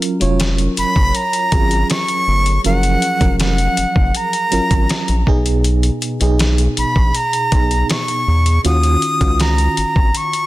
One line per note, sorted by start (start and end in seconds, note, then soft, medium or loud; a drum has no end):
0.00 0.20 F#3 medium
0.00 0.21 C#4 medium
0.00 0.21 F4 medium
0.00 2.66 A#4 loud
0.00 closed hi-hat medium
0.20 0.68 F1 medium
0.20 1.17 F#3 medium
0.20 1.17 C#4 medium
0.20 1.18 F4 medium
0.20 1.18 C#5 loud
0.20 closed hi-hat medium
0.40 snare loud
0.40 closed hi-hat medium
0.58 closed hi-hat medium
0.77 0.85 F#1 medium
0.77 1.18 B5 loud
0.77 closed hi-hat medium
0.96 1.12 F#1 medium
0.96 kick loud
1.15 1.90 A#5 loud
1.15 closed hi-hat medium
1.33 closed hi-hat medium
1.52 1.84 G#1 loud
1.52 2.35 F#3 medium
1.52 2.35 C#4 medium
1.52 2.35 F4 medium
1.52 2.36 G#4 medium
1.52 kick loud
1.52 closed hi-hat medium
1.71 closed hi-hat medium
1.90 2.61 C#6 loud
1.90 snare loud
1.90 closed hi-hat medium
2.08 closed hi-hat medium
2.28 2.59 G1 medium
2.46 closed hi-hat medium
2.64 2.96 F#1 loud
2.64 3.06 F3 medium
2.64 3.06 F#3 medium
2.64 3.06 C#4 medium
2.64 3.07 A#4 medium
2.64 3.36 F#5 loud
2.64 closed hi-hat medium
2.83 closed hi-hat medium
3.02 closed hi-hat medium
3.20 3.68 F1 medium
3.20 4.18 F3 medium
3.20 4.17 F#3 medium
3.20 4.17 C#4 medium
3.20 4.18 A#4 medium
3.20 kick medium
3.20 closed hi-hat medium
3.40 4.18 F#5 loud
3.40 snare loud
3.40 closed hi-hat medium
3.58 closed hi-hat soft
3.77 3.85 F#1 soft
3.77 closed hi-hat medium
3.96 4.12 F#1 medium
3.96 kick loud
4.15 5.28 A#5 loud
4.15 closed hi-hat medium
4.33 closed hi-hat medium
4.51 4.60 G#1 soft
4.51 5.27 F#3 medium
4.51 5.27 C#4 medium
4.51 5.27 F4 medium
4.51 5.28 A#4 medium
4.51 closed hi-hat medium
4.71 4.87 G#1 medium
4.71 kick medium
4.71 closed hi-hat medium
4.89 snare loud
4.89 closed hi-hat medium
5.08 5.24 A#1 medium
5.08 closed hi-hat medium
5.26 5.90 B1 loud
5.26 6.02 B2 loud
5.26 6.02 B3 medium
5.26 6.02 D#4 medium
5.26 6.03 G#4 loud
5.26 kick loud
5.46 closed hi-hat medium
5.64 closed hi-hat medium
5.83 closed hi-hat medium
6.02 closed hi-hat medium
6.20 6.68 B1 medium
6.20 7.17 B2 medium
6.20 7.17 B3 medium
6.20 7.18 D#4 medium
6.20 7.18 G#4 loud
6.20 closed hi-hat medium
6.39 snare loud
6.39 closed hi-hat medium
6.58 closed hi-hat soft
6.77 6.85 A#1 medium
6.77 7.18 B5 medium
6.77 closed hi-hat medium
6.96 7.12 A#1 medium
6.96 kick loud
7.15 7.90 A#5 loud
7.15 closed hi-hat medium
7.33 closed hi-hat medium
7.51 7.84 B1 medium
7.51 8.35 B2 medium
7.51 8.35 B3 medium
7.51 8.35 D#4 medium
7.51 8.36 G#4 medium
7.51 kick loud
7.51 closed hi-hat medium
7.71 closed hi-hat medium
7.90 8.61 C#6 loud
7.90 snare loud
7.90 closed hi-hat medium
8.08 closed hi-hat medium
8.28 8.59 E2 medium
8.46 closed hi-hat medium
8.64 8.96 D#2 loud
8.64 9.06 D#3 medium
8.64 9.06 C#4 medium
8.64 9.06 F4 medium
8.64 9.07 F#4 medium
8.64 9.43 D#6 loud
8.64 closed hi-hat medium
8.83 closed hi-hat medium
9.02 closed hi-hat medium
9.20 9.68 C#2 medium
9.20 10.17 D#3 medium
9.20 10.17 C#4 medium
9.20 10.18 F4 medium
9.20 10.18 F#4 medium
9.20 kick medium
9.20 closed hi-hat medium
9.40 10.18 A#5 loud
9.40 snare loud
9.40 closed hi-hat medium
9.58 closed hi-hat soft
9.77 9.85 G#1 medium
9.77 closed hi-hat medium
9.96 10.12 G#1 medium
9.96 kick loud
10.15 10.46 C#6 loud
10.15 closed hi-hat medium
10.33 closed hi-hat medium